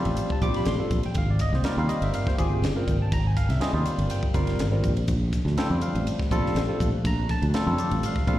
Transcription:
Already playing: analog synth pad C3 G3 D4, tine electric piano G3 C4 F4 G4
0.05 fretless electric bass A1, ride
0.17 hi-hat pedal, ride
0.30 tine electric piano A5, muted fretless electric bass stroke, kick
0.41 fretless electric bass A#1, tine electric piano G3 C4 F4 G4 D6, kick, hi-hat pedal, ride
0.54 tine electric piano B5, snare, ride
0.65 fretless electric bass A1, tine electric piano C6, snare, hi-hat pedal, ride
0.79 tine electric piano G3 C4 F4 A4, muted fretless electric bass stroke
0.90 fretless electric bass A#1, kick, hi-hat pedal, ride
1.03 tine electric piano F4 G4 G5, ride
1.14 fretless electric bass G#1, analog synth pad A#3 G5, tine electric piano F5, kick, hi-hat pedal, ride
1.30 tine electric piano D5
1.39 tine electric piano D#5, kick, snare, hi-hat pedal, ride
1.53 fretless electric bass C2, tine electric piano C5, snare
1.64 tine electric piano G3 C4 F4 A#4 D5, snare, hi-hat pedal, ride
1.77 fretless electric bass D#2, tine electric piano G3 C4 F4 A#4 F5
1.89 tine electric piano D#5, hi-hat pedal, ride
2.02 fretless electric bass G1, tine electric piano E5, ride
2.14 tine electric piano F5, hi-hat pedal, ride
2.26 tine electric piano C5, muted fretless electric bass stroke, kick, snare
2.38 fretless electric bass G#1, tine electric piano C4 F4 G4 G#4, kick, hi-hat pedal, ride
2.62 fretless electric bass G1, snare, hi-hat pedal, ride
2.76 tine electric piano G3 C4 F4 A#4, muted fretless electric bass stroke
2.87 fretless electric bass G#1, kick, hi-hat pedal, ride
3.00 tine electric piano F4 C5 A5
3.12 fretless electric bass G#1, analog synth pad G3, tine electric piano A#5, kick, hi-hat pedal, ride
3.27 tine electric piano G#5
3.37 tine electric piano F5, kick, snare, hi-hat pedal, ride
3.49 fretless electric bass C2, tine electric piano E5, snare, ride
3.60 tine electric piano G3 C4 F4 G#4 D#5, snare, hi-hat pedal, ride
3.73 fretless electric bass D#2, tine electric piano G3 C4 F4 A#4 C5
3.86 hi-hat pedal, ride
3.98 fretless electric bass G1, ride
4.10 tine electric piano G5, hi-hat pedal, ride
4.22 muted fretless electric bass stroke, kick
4.34 fretless electric bass G1, tine electric piano G3 C4 F4 A#4 F5, kick, hi-hat pedal, ride
4.47 snare, ride
4.59 fretless electric bass G#1, snare, hi-hat pedal, ride
4.71 tine electric piano G3 C4 F4 A#4
4.83 fretless electric bass A#1, kick, hi-hat pedal, ride
4.97 ride
5.08 fretless electric bass A#1, analog synth pad C3 A3 D4, kick, hi-hat pedal, ride
5.33 kick, snare, hi-hat pedal, ride
5.45 fretless electric bass D2, snare
5.57 tine electric piano G3 C4 F4 A4 G5, snare, hi-hat pedal, ride
5.70 fretless electric bass F2, tine electric piano G3 F4 C5
5.81 tine electric piano F5, hi-hat pedal, ride
5.95 fretless electric bass A1, ride
6.07 hi-hat pedal, ride
6.19 muted fretless electric bass stroke, kick, snare
6.31 fretless electric bass A#1, tine electric piano G3 C4 F4 A4, kick, hi-hat pedal, ride
6.46 snare
6.55 fretless electric bass A1, snare, hi-hat pedal, ride
6.68 tine electric piano G3 C4 F4 A4, muted fretless electric bass stroke
6.80 fretless electric bass A#1, kick, hi-hat pedal, ride
6.93 tine electric piano F4 C5
7.04 fretless electric bass A#1, tine electric piano A#5, kick, hi-hat pedal, ride
7.29 tine electric piano A5, kick, snare, hi-hat pedal, ride
7.42 fretless electric bass D2, ride
7.54 tine electric piano G3 C4 F4 A4, snare, hi-hat pedal, ride
7.66 fretless electric bass F2, tine electric piano G3 C4 F4 A4
7.75 tine electric piano C#5, hi-hat pedal, ride
7.79 tine electric piano D5
7.91 fretless electric bass A1, ride
8.03 tine electric piano F5, hi-hat pedal, ride
8.16 muted fretless electric bass stroke, kick, snare
8.27 fretless electric bass A#1, tine electric piano G3 C4 F4 A4 F5, kick, hi-hat pedal, ride

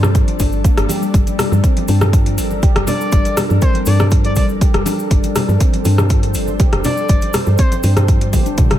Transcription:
Already playing: fm bass G2, ambient pad G3 D4 A4 D5
0.03 cross-stick, high conga, low conga, cabasa
0.15 handpan F3, kick, closed hi-hat, cabasa
0.28 closed hi-hat, muted conga
0.39 fm bass G1, handpan D4, kick, open hi-hat, low conga, cabasa
0.52 muted conga, cabasa
0.64 handpan A#3, kick, closed hi-hat, cabasa
0.77 fm bass G1, cross-stick, closed hi-hat, muted conga, cabasa
0.89 handpan G4, open hi-hat, high conga, cabasa
1.02 handpan G3, cabasa
1.14 fm bass G1, handpan G3, ambient pad A#4, kick, closed hi-hat, muted conga, cabasa
1.27 closed hi-hat, high conga, cabasa
1.39 handpan G3, cross-stick, open hi-hat, muted conga, low conga, cabasa
1.52 fm bass G2, high conga, cabasa
1.64 handpan C4, kick, closed hi-hat, muted conga, cabasa
1.77 closed hi-hat, high conga
1.88 fm bass G2, handpan D4, open hi-hat, muted conga, high conga, cabasa
2.01 cross-stick, high conga, low conga, cabasa
2.13 handpan F3, kick, closed hi-hat, cabasa
2.26 closed hi-hat, muted conga
2.38 fm bass G1, handpan G3, open hi-hat, cabasa
2.51 muted conga, high conga, cabasa
2.62 handpan G4, kick, closed hi-hat, low conga, cabasa
2.76 fm bass F1, cross-stick, closed hi-hat, muted conga
2.87 handpan D4, analog synth lead D5, open hi-hat, low conga, cabasa
3.01 cabasa
3.12 fm bass G1, handpan G3, kick, closed hi-hat, muted conga, cabasa
3.25 closed hi-hat, high conga, cabasa
3.37 handpan G3, cross-stick, open hi-hat, muted conga, low conga, cabasa
3.50 fm bass G2, high conga, cabasa
3.62 handpan C4, analog synth lead C5, kick, closed hi-hat, muted conga, cabasa
3.74 closed hi-hat, high conga
3.86 fm bass G2, handpan D4, analog synth lead D5, open hi-hat, muted conga, high conga, cabasa
3.99 cross-stick, high conga, low conga, cabasa
4.11 handpan F3, kick, closed hi-hat, cabasa
4.24 analog synth lead D5, closed hi-hat, muted conga
4.36 fm bass G1, handpan G3, analog synth lead D5, kick, open hi-hat, low conga, cabasa
4.49 muted conga, cabasa
4.61 handpan G4, kick, closed hi-hat, cabasa
4.74 fm bass F1, cross-stick, closed hi-hat, muted conga
4.86 handpan D4, open hi-hat, high conga, cabasa
4.99 cabasa
5.10 fm bass G1, handpan G3, ambient pad C5, kick, closed hi-hat, muted conga, cabasa
5.23 closed hi-hat, high conga, cabasa
5.35 handpan G3, cross-stick, open hi-hat, muted conga, low conga, cabasa
5.49 fm bass G2, high conga, cabasa
5.60 handpan C4, kick, closed hi-hat, muted conga, cabasa
5.73 closed hi-hat, high conga
5.85 fm bass G2, handpan D4, open hi-hat, muted conga, high conga, cabasa
5.98 cross-stick, high conga, low conga, cabasa
6.09 handpan F3, kick, closed hi-hat, cabasa
6.23 closed hi-hat, muted conga
6.34 fm bass G1, handpan G3, open hi-hat, cabasa
6.47 muted conga, high conga, cabasa
6.59 handpan G4, kick, closed hi-hat, low conga, cabasa
6.73 fm bass F1, cross-stick, closed hi-hat, muted conga
6.84 handpan D4, analog synth lead D5, open hi-hat, low conga, cabasa
6.97 cabasa
7.09 fm bass G1, handpan G3, kick, closed hi-hat, muted conga, cabasa
7.22 closed hi-hat, high conga, cabasa
7.33 handpan G3, cross-stick, open hi-hat, muted conga, low conga, cabasa
7.46 fm bass G2, high conga, cabasa
7.58 handpan C4, analog synth lead C5, kick, closed hi-hat, muted conga, cabasa
7.72 closed hi-hat, high conga, cabasa
7.83 fm bass G2, handpan D4, open hi-hat, muted conga, high conga, cabasa
7.97 cross-stick, closed hi-hat, high conga, low conga, cabasa
8.08 handpan F3, kick, closed hi-hat, cabasa
8.21 closed hi-hat, muted conga
8.33 fm bass G1, handpan G4, kick, open hi-hat, high tom, low conga, cabasa
8.46 handpan D4, closed hi-hat, muted conga, cabasa
8.58 handpan G3, kick, closed hi-hat, mid tom, cabasa
8.70 fm bass F1, cross-stick, closed hi-hat, mid tom, muted conga

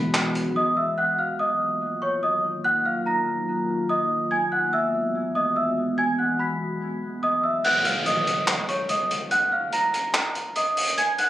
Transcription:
Already playing: 808-style bass E1, ambient pad E3 G#3 B3 F#4, celesta B5 B6
0.14 clap, closed hi-hat
0.35 closed hi-hat
0.46 808-style bass B1
0.56 celesta D#5 D#6
0.77 celesta E5 E6
0.98 ambient pad D#3 F#3 A#3 F4, celesta F#5 F#6
1.18 celesta F5 F6
1.39 celesta D#5 D#6
2.02 celesta C#5 C#6
2.23 celesta D#5 D#6
2.64 celesta F#5 F#6
2.85 celesta F5 F6
3.06 celesta A#5 A#6
3.89 celesta D#5 D#6
4.31 ambient pad E3 G#3 B3 F#4, celesta G#5 G#6
4.52 celesta F#5 F#6
4.73 celesta E5 E6
5.35 celesta D#5 D#6
5.56 celesta E5 E6
5.98 celesta G#5 G#6
6.18 celesta F#5 F#6
6.39 celesta B5 B6
7.23 celesta D#5 D#6
7.43 celesta E5 E6
7.64 celesta F#5 F#6, crash, downlifter
7.85 celesta F5 F6, closed hi-hat
8.06 celesta D#5 D#6, closed hi-hat
8.27 closed hi-hat
8.48 clap, closed hi-hat
8.69 celesta C#5 C#6, closed hi-hat
8.89 celesta D#5 D#6, closed hi-hat
9.11 closed hi-hat
9.31 celesta F#5 F#6, closed hi-hat
9.52 celesta F5 F6
9.73 celesta A#5 A#6, closed hi-hat
9.94 closed hi-hat
10.14 clap, closed hi-hat
10.35 closed hi-hat
10.56 celesta D#5 D#6, closed hi-hat
10.77 closed hi-hat, open hi-hat
10.87 closed hi-hat
10.98 celesta G#5 G#6, closed hi-hat
11.18 celesta F#5 F#6, closed hi-hat

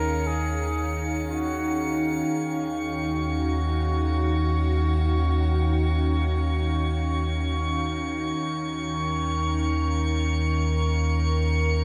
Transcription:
Already playing: sub bass D#2, ambient pad D#3 C#4 D#4 G#4 F5, flugelhorn A#4, synth texture C#7
0.27 flugelhorn G#4
1.28 flugelhorn F#4
2.28 sub bass D#2, synth texture C#6
2.37 ambient pad D#4
2.66 ambient pad F#4
8.37 sub bass D#2, ambient pad D#3
8.73 ambient pad A#4

